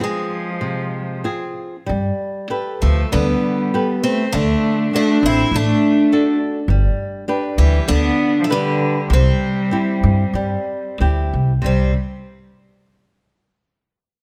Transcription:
0.00 cello F3, twelve-string acoustic guitar G#3, nylon-string guitar C4 F4 G#4
0.61 nylon-string guitar C3
1.24 nylon-string guitar C4 F4 G#4
1.86 upright bass G2, nylon-string guitar G3
2.50 nylon-string guitar G4 A4 B4
2.82 upright bass D2, cello F3, twelve-string acoustic guitar A3
3.12 upright bass D2, nylon-string guitar D3, cello G3, twelve-string acoustic guitar B3
3.74 nylon-string guitar G4 A4 B4
4.03 cello A3, twelve-string acoustic guitar C4
4.33 upright bass D2, nylon-string guitar D3, cello A3, twelve-string acoustic guitar D4
4.93 cello A3, nylon-string guitar D4 F#4 A4, twelve-string acoustic guitar D4
5.23 upright bass A1, cello C4, twelve-string acoustic guitar E4
5.51 upright bass A1, nylon-string guitar A3, cello A3
5.56 twelve-string acoustic guitar D4
6.12 nylon-string guitar D4 F#4 A4
6.68 upright bass G1, nylon-string guitar G3
7.28 nylon-string guitar D4 G4 B4
7.58 upright bass D2, cello E3, twelve-string acoustic guitar G3
7.88 upright bass D2, nylon-string guitar D3, cello B3, twelve-string acoustic guitar D4
8.41 cello F3, twelve-string acoustic guitar A3
8.50 cello D3, twelve-string acoustic guitar G3, nylon-string guitar D4 G4 B4
9.10 upright bass C2, nylon-string guitar C3, cello G3, twelve-string acoustic guitar C4
9.71 nylon-string guitar C4 E4 G4
10.03 upright bass G2
10.33 upright bass G2, nylon-string guitar G3
11.00 upright bass D2, nylon-string guitar C4 E4 G4
11.33 upright bass C2
11.62 upright bass C2, nylon-string guitar C3 G3, cello G3
11.66 twelve-string acoustic guitar C4

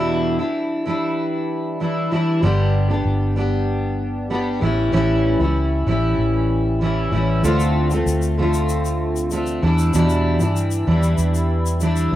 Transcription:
Already playing: steel-string acoustic guitar E2 B2 E3 G3 D4 E4
0.39 steel-string acoustic guitar E3 G3 D4 E4
0.86 steel-string acoustic guitar E3 G3 D4 E4
1.80 steel-string acoustic guitar E3 G3 D4 E4
2.11 steel-string acoustic guitar E3 G3 D4 E4
2.42 fingered electric bass G1, steel-string acoustic guitar G2 D3 G3 B3 D4 G4
2.90 steel-string acoustic guitar G3 B3 D4 G4
3.05 fingered electric bass G1
3.36 steel-string acoustic guitar G3 B3 D4 G4
4.30 steel-string acoustic guitar G3 B3 D4 G4
4.61 fingered electric bass A1, steel-string acoustic guitar E3 G3 C#4 E4
4.92 fingered electric bass A1, steel-string acoustic guitar A2 E3 G3 C#4 E4
5.40 fingered electric bass C#2, steel-string acoustic guitar G3 C#4 E4
5.86 fingered electric bass A1, steel-string acoustic guitar E3 G3 C#4 E4
6.18 fingered electric bass A1
6.81 steel-string acoustic guitar E3 G3 C#4 E4
7.12 fingered electric bass A1, steel-string acoustic guitar E3 G3 C#4 E4
7.43 fingered electric bass D2, steel-string acoustic guitar D3 A3 C4 F4, shaker
7.60 shaker
7.91 steel-string acoustic guitar A3 C4 F4, shaker
8.06 fingered electric bass D2, shaker
8.22 shaker
8.38 steel-string acoustic guitar D3 A3 C4 F4
8.54 shaker
8.69 shaker
8.85 shaker
9.16 shaker
9.31 steel-string acoustic guitar D3 A3 C4 F4, shaker
9.47 shaker
9.62 fingered electric bass E2, steel-string acoustic guitar E3 G3 D4 E4
9.78 shaker
9.94 fingered electric bass E2, steel-string acoustic guitar E2 B2 E3 G3 D4 E4, shaker
10.10 shaker
10.40 fingered electric bass G2, steel-string acoustic guitar E3 G3 D4 E4, shaker
10.56 shaker
10.71 shaker
10.87 fingered electric bass E2, steel-string acoustic guitar E3 G3 D4 E4
11.03 shaker
11.18 fingered electric bass E2, shaker
11.35 shaker
11.66 shaker
11.80 steel-string acoustic guitar E3 G3 D4 E4, shaker
11.96 shaker
12.12 fingered electric bass D2

